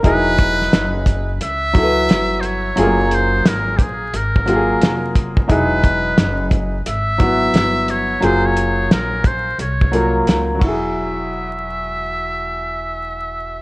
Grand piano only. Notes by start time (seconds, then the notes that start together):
Already playing: A#4
0.03 F#3 D#4 E4 G#4
1.73 F#3 E4 F#4 A4
1.83 B4
2.76 F#3 A3 F4 G#4
2.83 A#3
4.46 F#3 A#3 F4 G4
4.56 G#4
5.48 F#3 D#4 E4 G#4
7.18 F#3 B3 E4 F#4
8.21 F#3 A#3 F4 G#4
9.91 F#3 A#3 F4 A#4
10.55 F#3
10.59 F#4
10.63 E4
10.68 G#4